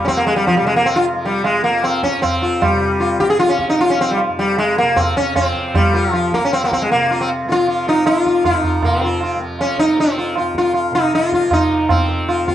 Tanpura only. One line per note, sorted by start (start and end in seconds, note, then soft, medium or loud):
0.00 0.60 C3 medium
0.00 1.12 F3 medium
0.06 2.17 F2 medium
0.60 2.72 C3 medium
1.12 1.66 F3 medium
1.66 3.25 F3 medium
2.17 4.28 F2 soft
2.72 4.81 C3 medium
3.25 3.77 F3 medium
3.77 5.34 F3 medium
4.28 6.41 F2 medium
4.81 6.92 C3 medium
5.34 5.87 F3 medium
5.87 7.45 F3 medium
6.41 8.50 F2 medium
6.93 8.84 C3 medium
7.45 7.98 F3 medium
7.98 9.35 F3 medium
8.50 10.39 F2 medium
8.84 10.90 C3 medium
9.35 9.88 F3 medium
9.88 11.42 F3 medium
10.40 12.46 F2 medium
10.91 12.55 C3 medium
11.42 11.94 F3 medium
11.94 12.55 F3 medium
12.46 12.55 F2 medium